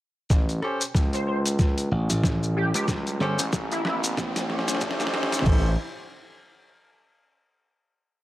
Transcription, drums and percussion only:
0.30 kick, snare, maracas
0.49 closed hi-hat, maracas
0.62 cross-stick
0.81 closed hi-hat, maracas
0.95 kick, snare, maracas
1.13 closed hi-hat, maracas
1.46 closed hi-hat, maracas
1.59 kick, snare, maracas
1.78 closed hi-hat, maracas
2.10 closed hi-hat, maracas
2.24 kick, snare, maracas
2.43 maracas
2.74 closed hi-hat, maracas
2.88 kick, snare, maracas
3.07 closed hi-hat, maracas
3.20 snare
3.39 closed hi-hat, maracas
3.53 kick, snare, maracas
3.72 closed hi-hat, maracas
3.85 snare
4.04 closed hi-hat, maracas
4.17 kick, snare, maracas
4.36 snare, closed hi-hat, maracas
4.50 snare
4.59 snare
4.68 snare, closed hi-hat, maracas
4.75 snare
4.81 kick, snare, maracas
4.91 snare
5.00 snare, maracas
5.07 snare
5.14 snare
5.23 snare
5.32 snare, closed hi-hat, maracas
5.39 snare
5.46 kick, crash

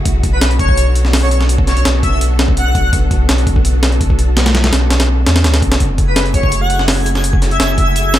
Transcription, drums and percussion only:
0.05 kick, closed hi-hat
0.23 kick, closed hi-hat
0.41 snare, closed hi-hat
0.51 closed hi-hat
0.59 kick, closed hi-hat
0.69 kick
0.77 closed hi-hat
0.95 closed hi-hat
1.05 snare
1.13 snare, open hi-hat
1.31 closed hi-hat
1.41 snare
1.49 closed hi-hat
1.58 kick
1.67 snare, closed hi-hat
1.77 closed hi-hat
1.85 snare, closed hi-hat
2.03 kick, closed hi-hat
2.21 closed hi-hat
2.39 snare, closed hi-hat
2.48 kick
2.57 closed hi-hat
2.75 kick, closed hi-hat
2.93 kick, closed hi-hat
3.11 kick, closed hi-hat
3.29 snare, closed hi-hat
3.38 closed hi-hat
3.47 kick, closed hi-hat
3.56 kick
3.65 closed hi-hat
3.83 snare, closed hi-hat
3.92 closed hi-hat
4.01 kick, closed hi-hat
4.10 kick
4.19 closed hi-hat
4.37 snare, closed hi-hat
4.46 snare, closed hi-hat
4.55 snare, closed hi-hat
4.64 snare, closed hi-hat
4.73 snare, closed hi-hat
4.91 snare, closed hi-hat
5.00 snare, closed hi-hat
5.27 snare, closed hi-hat
5.36 snare, closed hi-hat
5.44 snare, closed hi-hat
5.54 snare, closed hi-hat
5.62 kick, closed hi-hat
5.72 snare, closed hi-hat
5.80 kick, closed hi-hat
5.98 kick, closed hi-hat
6.16 snare, closed hi-hat
6.26 closed hi-hat
6.34 kick, closed hi-hat
6.43 kick
6.52 closed hi-hat
6.70 closed hi-hat
6.79 snare
6.88 snare, open hi-hat
7.06 closed hi-hat
7.15 snare
7.24 closed hi-hat
7.33 kick
7.42 snare, closed hi-hat
7.51 closed hi-hat
7.60 snare, closed hi-hat
7.78 kick, closed hi-hat
7.96 closed hi-hat
8.14 snare, closed hi-hat

